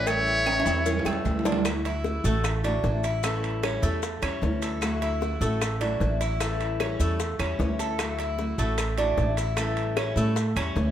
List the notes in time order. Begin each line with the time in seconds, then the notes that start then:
Already playing: A1
0.06 E3 G3 A3 C#4 E4 C#5 E5, cowbell, low agogo, claves, maracas
0.27 maracas
0.46 E3 G3 C#4 E4, cowbell, high timbale, low agogo, claves, maracas
0.60 high timbale
0.65 E2 G3 C#4 E4, cowbell, low agogo, maracas
0.86 C#4, muted steel-string acoustic guitar stroke, cowbell, low timbale, maracas
0.99 low timbale
1.05 E2 G3 A3 C#4 E4, high bongo, low agogo, claves, maracas
1.13 low timbale
1.25 D2 E3 G3 C#4 E4, cowbell, low timbale, maracas
1.39 low timbale
1.45 D4, cowbell, low bongo, low agogo, maracas
1.52 low timbale
1.64 D3 F#3 A3 E4 F#4, high bongo, high timbale, claves, maracas
1.85 E4, high timbale, maracas
2.04 F#3 A3 E4 F#4, high bongo, maracas
2.24 A1 F#3 A3 E4 F#4, high bongo, maracas
2.44 muted steel-string acoustic guitar stroke, high bongo, high timbale, claves, maracas
2.64 F#3 A3 D4 E4 F#4, high bongo, high timbale, maracas
2.84 A1 F#3 A3 E4 F#4, high bongo, low bongo, maracas
3.04 E4, high bongo, high timbale, maracas
3.23 E3 G3 A3 C#4 E4, high bongo, high timbale, claves, maracas
3.44 high timbale, maracas
3.63 E3 G3 C#4 E4, high bongo, high timbale, claves, maracas
3.82 E2 G3 A3 C#4 E4, high bongo, maracas
4.03 muted steel-string acoustic guitar stroke, high bongo, high timbale, maracas
4.22 E2 G3 C#4 E4, high bongo, high timbale, claves, maracas
4.41 D2 E3 G3 C#4 E4, high bongo, low bongo, low timbale, maracas
4.62 A4, high bongo, high timbale, maracas
4.81 D3 F#3 A3 E4 F#4, high bongo, high timbale, claves, maracas
5.02 E4, high timbale, maracas
5.21 F#3 A3 E4 F#4, high bongo, maracas
5.41 A1 F#3 A3 E4 F#4, high bongo, maracas
5.61 muted steel-string acoustic guitar stroke, high bongo, high timbale, claves, maracas
5.81 F#3 A3 D4 E4 F#4, high bongo, high timbale, maracas
6.00 A1 F#3 A3 E4 F#4, high bongo, low bongo, maracas
6.21 E4, high bongo, high timbale, maracas
6.40 E3 G3 A3 C#4 E4, high bongo, high timbale, claves, maracas
6.60 high timbale, maracas
6.80 E3 G3 C#4 E4, high bongo, high timbale, claves, maracas
6.99 E2 G3 A3 C#4 E4, high bongo, maracas
7.19 muted steel-string acoustic guitar stroke, high bongo, high timbale, maracas
7.39 E2 G3 C#4 E4, high bongo, high timbale, claves, maracas
7.59 D2 E3 G3 C#4 E4, high bongo, low bongo, low timbale, maracas
7.79 A4, high bongo, high timbale, maracas
7.98 D3 F#3 A3 E4 F#4, high bongo, high timbale, claves, maracas
8.19 E4, high timbale, maracas
8.38 F#3 A3 E4 F#4, high bongo, maracas
8.58 A1 F#3 A3 E4 F#4, high bongo, maracas
8.78 muted steel-string acoustic guitar stroke, high bongo, high timbale, claves, maracas
8.98 F#3 A3 D4 E4 F#4, high bongo, high timbale, maracas
9.17 A1 F#3 A3 E4 F#4, high bongo, low bongo, maracas
9.37 E4, high bongo, high timbale, maracas
9.56 E3 G3 A3 C#4 E4, high bongo, high timbale, claves, maracas
9.77 high timbale, maracas
9.96 E3 G3 C#4 E4, high bongo, high timbale, claves, maracas
10.16 A2 G3 A3 C#4 E4, high bongo, maracas
10.36 muted steel-string acoustic guitar stroke, high bongo, high timbale, maracas
10.56 E2 G3 C#4 E4, high bongo, high timbale, claves, maracas
10.75 D2 E3 G3 C#4 E4, high bongo, low bongo, maracas